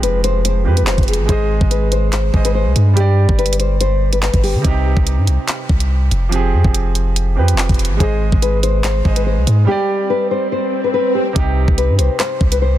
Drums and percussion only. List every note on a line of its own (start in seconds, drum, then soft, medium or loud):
0.03 closed hi-hat medium
0.24 closed hi-hat medium
0.45 closed hi-hat medium
0.77 closed hi-hat medium
0.87 clap loud
0.98 kick loud
0.98 closed hi-hat soft
1.03 closed hi-hat medium
1.08 closed hi-hat medium
1.14 closed hi-hat medium
1.29 kick loud
1.29 closed hi-hat medium
1.61 kick medium
1.71 closed hi-hat medium
1.92 closed hi-hat medium
2.13 clap loud
2.13 closed hi-hat medium
2.34 kick loud
2.45 closed hi-hat medium
2.76 closed hi-hat medium
2.97 closed hi-hat medium
3.29 kick loud
3.39 closed hi-hat medium
3.46 closed hi-hat medium
3.53 closed hi-hat medium
3.60 closed hi-hat medium
3.81 closed hi-hat medium
4.13 closed hi-hat medium
4.23 clap loud
4.34 kick loud
4.34 closed hi-hat medium
4.44 open hi-hat medium
4.65 kick loud
4.65 closed hi-hat medium
4.97 kick loud
5.07 closed hi-hat medium
5.27 closed hi-hat medium
5.48 clap loud
5.48 closed hi-hat medium
5.69 kick medium
5.80 closed hi-hat medium
6.11 closed hi-hat medium
6.32 closed hi-hat medium
6.65 kick medium
6.74 closed hi-hat medium
6.95 closed hi-hat medium
7.16 closed hi-hat medium
7.48 closed hi-hat medium
7.58 clap loud
7.69 kick medium
7.69 closed hi-hat soft
7.74 closed hi-hat medium
7.79 closed hi-hat medium
7.85 closed hi-hat medium
8.00 kick loud
8.00 closed hi-hat medium
8.32 kick medium
8.42 closed hi-hat medium
8.63 closed hi-hat medium
8.84 clap loud
8.84 closed hi-hat medium
9.05 kick loud
9.16 closed hi-hat medium
9.47 closed hi-hat medium
11.36 kick loud
11.36 closed hi-hat medium
11.68 kick loud
11.78 closed hi-hat medium
11.99 closed hi-hat medium
12.20 cross-stick medium
12.20 clap loud
12.20 closed hi-hat medium
12.41 kick loud
12.52 closed hi-hat medium